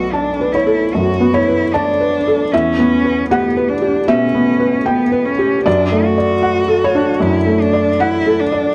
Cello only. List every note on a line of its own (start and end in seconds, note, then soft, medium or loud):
0.00 0.14 F#4 soft
0.13 0.54 D4 soft
0.52 0.95 E4 soft
0.93 1.35 F#4 medium
1.34 1.75 E4 medium
1.73 2.53 D4 medium
2.52 3.29 C#4 medium
3.30 3.70 B3 medium
3.69 4.09 D4 medium
4.08 4.88 C#4 soft
4.86 5.27 B3 medium
5.25 5.64 C#4 medium
5.65 6.05 D4 medium
6.04 7.23 F#4 medium
7.22 7.62 E4 medium
7.61 8.02 D4 medium
8.00 8.41 E4 medium
8.40 8.75 D4 medium